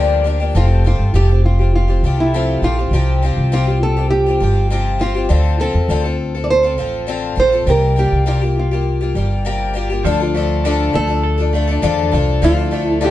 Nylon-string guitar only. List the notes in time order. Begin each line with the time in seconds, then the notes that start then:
Already playing: G4
0.57 F4
0.87 F4
1.16 G4
1.45 F4
1.75 F4
2.20 E4
2.64 F4
3.54 F4
3.83 A4
4.10 G4
5.01 F4
5.61 A4
6.44 D5
6.50 C5
7.40 C5
7.70 A#4
7.99 G4
8.28 F4
8.59 F4
10.95 A4
12.44 F4
12.87 E4
13.04 G4